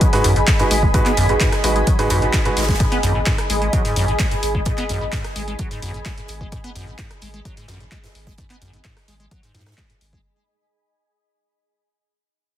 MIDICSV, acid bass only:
0, 0, Header, 1, 2, 480
1, 0, Start_track
1, 0, Key_signature, 5, "minor"
1, 0, Tempo, 465116
1, 970, Time_signature, 4, 2, 24, 8
1, 12975, End_track
2, 0, Start_track
2, 0, Title_t, "Acid bass"
2, 0, Program_c, 0, 38
2, 10, Note_on_c, 0, 54, 81
2, 111, Note_off_c, 0, 54, 0
2, 132, Note_on_c, 0, 44, 76
2, 230, Note_off_c, 0, 44, 0
2, 251, Note_on_c, 0, 42, 104
2, 351, Note_off_c, 0, 42, 0
2, 372, Note_on_c, 0, 44, 75
2, 411, Note_off_c, 0, 44, 0
2, 613, Note_on_c, 0, 44, 75
2, 652, Note_off_c, 0, 44, 0
2, 731, Note_on_c, 0, 56, 75
2, 798, Note_off_c, 0, 56, 0
2, 853, Note_on_c, 0, 56, 76
2, 917, Note_off_c, 0, 56, 0
2, 971, Note_on_c, 0, 44, 82
2, 1038, Note_off_c, 0, 44, 0
2, 1092, Note_on_c, 0, 59, 100
2, 1157, Note_off_c, 0, 59, 0
2, 1209, Note_on_c, 0, 42, 104
2, 1310, Note_off_c, 0, 42, 0
2, 1331, Note_on_c, 0, 44, 75
2, 1371, Note_off_c, 0, 44, 0
2, 1449, Note_on_c, 0, 44, 81
2, 1551, Note_off_c, 0, 44, 0
2, 1689, Note_on_c, 0, 56, 74
2, 1757, Note_off_c, 0, 56, 0
2, 1812, Note_on_c, 0, 56, 75
2, 1877, Note_off_c, 0, 56, 0
2, 1929, Note_on_c, 0, 54, 80
2, 2031, Note_off_c, 0, 54, 0
2, 2052, Note_on_c, 0, 44, 74
2, 2149, Note_off_c, 0, 44, 0
2, 2169, Note_on_c, 0, 42, 103
2, 2271, Note_off_c, 0, 42, 0
2, 2292, Note_on_c, 0, 44, 76
2, 2331, Note_off_c, 0, 44, 0
2, 2531, Note_on_c, 0, 44, 76
2, 2571, Note_off_c, 0, 44, 0
2, 2649, Note_on_c, 0, 56, 75
2, 2717, Note_off_c, 0, 56, 0
2, 2771, Note_on_c, 0, 56, 75
2, 2837, Note_off_c, 0, 56, 0
2, 2889, Note_on_c, 0, 44, 80
2, 2957, Note_off_c, 0, 44, 0
2, 3012, Note_on_c, 0, 59, 100
2, 3077, Note_off_c, 0, 59, 0
2, 3130, Note_on_c, 0, 42, 101
2, 3231, Note_off_c, 0, 42, 0
2, 3253, Note_on_c, 0, 44, 75
2, 3292, Note_off_c, 0, 44, 0
2, 3370, Note_on_c, 0, 44, 79
2, 3471, Note_off_c, 0, 44, 0
2, 3610, Note_on_c, 0, 56, 75
2, 3678, Note_off_c, 0, 56, 0
2, 3732, Note_on_c, 0, 56, 74
2, 3797, Note_off_c, 0, 56, 0
2, 3850, Note_on_c, 0, 54, 79
2, 3951, Note_off_c, 0, 54, 0
2, 3972, Note_on_c, 0, 44, 74
2, 4070, Note_off_c, 0, 44, 0
2, 4090, Note_on_c, 0, 42, 101
2, 4191, Note_off_c, 0, 42, 0
2, 4213, Note_on_c, 0, 44, 74
2, 4252, Note_off_c, 0, 44, 0
2, 4330, Note_on_c, 0, 56, 81
2, 4397, Note_off_c, 0, 56, 0
2, 4452, Note_on_c, 0, 44, 76
2, 4491, Note_off_c, 0, 44, 0
2, 4692, Note_on_c, 0, 56, 74
2, 4757, Note_off_c, 0, 56, 0
2, 4810, Note_on_c, 0, 44, 81
2, 4877, Note_off_c, 0, 44, 0
2, 4932, Note_on_c, 0, 59, 97
2, 4997, Note_off_c, 0, 59, 0
2, 5051, Note_on_c, 0, 42, 100
2, 5151, Note_off_c, 0, 42, 0
2, 5172, Note_on_c, 0, 44, 76
2, 5211, Note_off_c, 0, 44, 0
2, 5290, Note_on_c, 0, 44, 81
2, 5391, Note_off_c, 0, 44, 0
2, 5529, Note_on_c, 0, 56, 75
2, 5597, Note_off_c, 0, 56, 0
2, 5652, Note_on_c, 0, 56, 74
2, 5717, Note_off_c, 0, 56, 0
2, 5769, Note_on_c, 0, 54, 80
2, 5871, Note_off_c, 0, 54, 0
2, 5891, Note_on_c, 0, 44, 75
2, 5989, Note_off_c, 0, 44, 0
2, 6009, Note_on_c, 0, 42, 101
2, 6111, Note_off_c, 0, 42, 0
2, 6132, Note_on_c, 0, 44, 76
2, 6171, Note_off_c, 0, 44, 0
2, 6250, Note_on_c, 0, 56, 80
2, 6317, Note_off_c, 0, 56, 0
2, 6372, Note_on_c, 0, 44, 76
2, 6411, Note_off_c, 0, 44, 0
2, 6611, Note_on_c, 0, 56, 74
2, 6677, Note_off_c, 0, 56, 0
2, 6730, Note_on_c, 0, 44, 81
2, 6797, Note_off_c, 0, 44, 0
2, 6853, Note_on_c, 0, 59, 96
2, 6917, Note_off_c, 0, 59, 0
2, 6970, Note_on_c, 0, 42, 103
2, 7071, Note_off_c, 0, 42, 0
2, 7092, Note_on_c, 0, 44, 73
2, 7131, Note_off_c, 0, 44, 0
2, 7210, Note_on_c, 0, 44, 80
2, 7311, Note_off_c, 0, 44, 0
2, 7449, Note_on_c, 0, 56, 76
2, 7517, Note_off_c, 0, 56, 0
2, 7572, Note_on_c, 0, 56, 75
2, 7637, Note_off_c, 0, 56, 0
2, 7690, Note_on_c, 0, 54, 78
2, 7791, Note_off_c, 0, 54, 0
2, 7813, Note_on_c, 0, 44, 75
2, 7910, Note_off_c, 0, 44, 0
2, 7931, Note_on_c, 0, 42, 101
2, 8032, Note_off_c, 0, 42, 0
2, 8054, Note_on_c, 0, 44, 73
2, 8092, Note_off_c, 0, 44, 0
2, 8171, Note_on_c, 0, 56, 81
2, 8238, Note_off_c, 0, 56, 0
2, 8293, Note_on_c, 0, 44, 75
2, 8332, Note_off_c, 0, 44, 0
2, 8533, Note_on_c, 0, 56, 76
2, 8597, Note_off_c, 0, 56, 0
2, 8650, Note_on_c, 0, 44, 81
2, 8718, Note_off_c, 0, 44, 0
2, 8772, Note_on_c, 0, 59, 93
2, 8837, Note_off_c, 0, 59, 0
2, 8889, Note_on_c, 0, 42, 98
2, 8990, Note_off_c, 0, 42, 0
2, 9013, Note_on_c, 0, 44, 76
2, 9052, Note_off_c, 0, 44, 0
2, 9131, Note_on_c, 0, 44, 81
2, 9231, Note_off_c, 0, 44, 0
2, 9371, Note_on_c, 0, 56, 75
2, 9438, Note_off_c, 0, 56, 0
2, 9492, Note_on_c, 0, 56, 74
2, 9557, Note_off_c, 0, 56, 0
2, 9610, Note_on_c, 0, 54, 80
2, 9711, Note_off_c, 0, 54, 0
2, 9732, Note_on_c, 0, 44, 71
2, 9830, Note_off_c, 0, 44, 0
2, 9850, Note_on_c, 0, 42, 98
2, 9951, Note_off_c, 0, 42, 0
2, 9972, Note_on_c, 0, 44, 74
2, 10011, Note_off_c, 0, 44, 0
2, 10090, Note_on_c, 0, 56, 79
2, 10157, Note_off_c, 0, 56, 0
2, 10213, Note_on_c, 0, 44, 78
2, 10252, Note_off_c, 0, 44, 0
2, 10452, Note_on_c, 0, 56, 73
2, 10517, Note_off_c, 0, 56, 0
2, 12975, End_track
0, 0, End_of_file